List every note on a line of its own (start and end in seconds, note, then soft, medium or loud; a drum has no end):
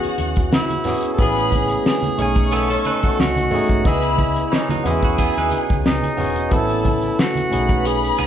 0.00 0.58 B3 medium
0.00 0.26 C#4 loud
0.00 0.59 C#4 medium
0.00 2.16 C#4 medium
0.00 1.17 E4 medium
0.00 0.60 F#4 medium
0.00 0.83 F#4 medium
0.00 1.17 F#4 medium
0.00 0.60 G#4 medium
0.00 1.17 G#4 medium
0.00 0.83 F#5 loud
0.00 closed hi-hat medium
0.05 muted fingered electric bass stroke soft
0.18 0.48 D#2 medium
0.18 closed hi-hat medium
0.18 high conga soft
0.36 kick medium
0.36 closed hi-hat medium
0.52 1.10 E4 loud
0.52 snare loud
0.52 muted conga soft
0.52 high conga medium
0.70 closed hi-hat medium
0.70 high conga medium
0.84 1.08 B3 medium
0.84 1.09 C#4 medium
0.84 1.10 F#4 medium
0.84 snare soft
0.84 open hi-hat medium
0.84 muted conga soft
0.84 low conga medium
0.88 1.10 G#4 medium
1.03 closed hi-hat medium
1.14 1.23 A4 medium
1.18 1.76 A1 loud
1.18 2.18 G#3 medium
1.18 3.83 A3 medium
1.18 2.09 B3 medium
1.18 2.10 C#4 medium
1.18 2.10 E4 medium
1.18 1.87 G#4 loud
1.18 2.11 G#4 medium
1.18 1.84 B4 medium
1.18 1.84 B5 loud
1.18 kick loud
1.18 closed hi-hat medium
1.18 muted conga soft
1.36 closed hi-hat soft
1.51 kick medium
1.51 closed hi-hat medium
1.51 muted conga soft
1.51 high conga medium
1.69 closed hi-hat medium
1.86 2.55 G#4 loud
1.86 snare loud
2.03 closed hi-hat medium
2.03 high conga medium
2.18 2.76 B1 medium
2.18 3.25 A3 medium
2.18 4.83 B3 medium
2.18 3.26 C#4 medium
2.18 3.26 D#4 medium
2.18 3.49 C#5 medium
2.18 4.82 D#5 medium
2.18 3.49 C#6 loud
2.18 closed hi-hat medium
2.18 low conga medium
2.22 3.27 G#5 medium
2.35 kick loud
2.35 closed hi-hat soft
2.52 2.69 B3 medium
2.52 2.69 G#4 medium
2.52 3.22 A4 loud
2.52 closed hi-hat medium
2.52 muted conga soft
2.70 2.85 C#4 medium
2.70 2.85 A4 medium
2.70 closed hi-hat medium
2.85 3.03 D#4 medium
2.85 3.03 B4 medium
2.85 closed hi-hat medium
2.85 high conga soft
3.03 3.82 A3 medium
3.03 3.81 F#4 soft
3.03 kick loud
3.03 closed hi-hat soft
3.19 3.47 C#2 medium
3.19 3.85 F#4 loud
3.19 snare loud
3.19 muted conga soft
3.19 high conga medium
3.36 closed hi-hat medium
3.36 high conga medium
3.51 3.75 A3 medium
3.51 3.75 C#4 medium
3.51 3.76 D#4 medium
3.51 3.76 G#4 medium
3.51 open hi-hat medium
3.51 muted conga soft
3.51 low conga medium
3.69 3.83 G#1 medium
3.69 kick medium
3.69 closed hi-hat medium
3.84 4.43 C#2 loud
3.84 4.84 C#3 medium
3.84 4.84 E3 medium
3.84 4.75 B3 medium
3.84 4.55 E4 loud
3.84 4.76 E4 medium
3.84 4.77 G#4 medium
3.84 4.50 B4 medium
3.84 4.76 D#5 medium
3.84 4.50 B5 loud
3.84 kick loud
3.84 closed hi-hat medium
3.84 muted conga soft
4.02 closed hi-hat soft
4.17 kick medium
4.17 closed hi-hat medium
4.17 high conga medium
4.36 closed hi-hat soft
4.52 4.70 E3 medium
4.52 4.69 C#4 medium
4.52 4.89 D#4 medium
4.52 snare loud
4.69 4.85 F#3 medium
4.69 4.85 D#4 medium
4.69 closed hi-hat medium
4.69 high conga medium
4.84 5.29 E2 medium
4.84 6.50 E3 medium
4.84 5.03 G#3 medium
4.84 5.92 B3 medium
4.84 5.92 C#4 medium
4.84 7.49 C#4 medium
4.84 5.03 E4 medium
4.84 6.50 F#4 medium
4.84 5.93 F#4 medium
4.84 6.16 G#4 medium
4.84 6.50 G#4 medium
4.84 5.93 G#4 medium
4.84 6.16 G#5 loud
4.84 closed hi-hat medium
4.84 muted conga soft
4.84 low conga medium
4.88 5.60 E4 medium
5.02 5.18 F#4 medium
5.02 kick medium
5.02 closed hi-hat soft
5.17 5.36 B3 medium
5.17 5.36 G#4 medium
5.17 kick medium
5.17 closed hi-hat loud
5.17 muted conga soft
5.37 5.50 D#2 medium
5.37 6.33 D#4 medium
5.37 6.33 B4 medium
5.37 closed hi-hat medium
5.51 closed hi-hat medium
5.51 high conga soft
5.69 5.83 C#2 medium
5.69 kick medium
5.69 closed hi-hat soft
5.85 6.01 C#2 medium
5.85 6.54 D#4 medium
5.85 snare loud
5.85 high conga medium
6.02 closed hi-hat medium
6.02 high conga medium
6.17 6.47 E1 medium
6.17 6.41 B3 medium
6.17 6.42 C#4 medium
6.17 6.42 F#4 medium
6.17 6.43 G#4 medium
6.17 open hi-hat medium
6.17 muted conga soft
6.17 low conga medium
6.36 closed hi-hat medium
6.49 7.09 A1 medium
6.49 8.27 A3 medium
6.49 7.41 B3 medium
6.49 7.51 B3 medium
6.49 6.58 C4 medium
6.49 7.42 E4 medium
6.49 7.21 E4 loud
6.49 7.17 A4 medium
6.49 7.17 A5 loud
6.49 kick loud
6.49 closed hi-hat medium
6.49 muted conga soft
6.54 7.45 C#4 medium
6.54 7.43 A4 medium
6.69 closed hi-hat soft
6.85 kick medium
6.85 closed hi-hat medium
6.85 muted conga soft
6.85 high conga medium
7.02 closed hi-hat soft
7.19 7.88 F#4 loud
7.19 snare loud
7.19 muted conga soft
7.35 closed hi-hat medium
7.35 high conga medium
7.50 8.10 B1 medium
7.50 8.27 A3 medium
7.50 8.27 B3 medium
7.50 8.27 C#4 medium
7.50 8.27 D#4 medium
7.50 8.27 G#4 medium
7.50 8.27 B4 medium
7.50 8.27 B5 loud
7.50 closed hi-hat medium
7.50 muted conga soft
7.50 low conga medium
7.69 kick loud
7.69 closed hi-hat soft
7.85 8.27 G#4 loud
7.85 closed hi-hat medium
8.05 closed hi-hat medium
8.19 8.27 C#2 medium
8.19 8.27 B3 medium
8.19 8.27 G#4 medium
8.19 closed hi-hat medium
8.19 high conga soft